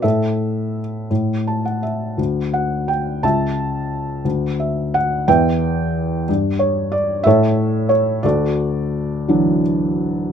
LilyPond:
<<
  \new Staff \with { instrumentName = "Felt piano" } { \time 6/8 \key d \major \tempo 4. = 58 << { e''4 r4 a''16 fis''16 e''8 | r8 fis''8 g''8 a''4. | r8 e''8 fis''8 g''4. | r8 cis''8 d''8 e''4 cis''8 |
d''2 r4 | } \\ { a'4. r4. | r4. e''4. | r4. <b' e''>4. | r4. <a' cis''>4. |
<fis' a'>2 r4 | } >> }
  \new Staff \with { instrumentName = "Felt piano" } { \clef bass \time 6/8 \key d \major a,4. a,4. | d,4. cis,4. | d,4. e,4. | g,4. a,4. |
d,4. <e fis d'>4. | }
>>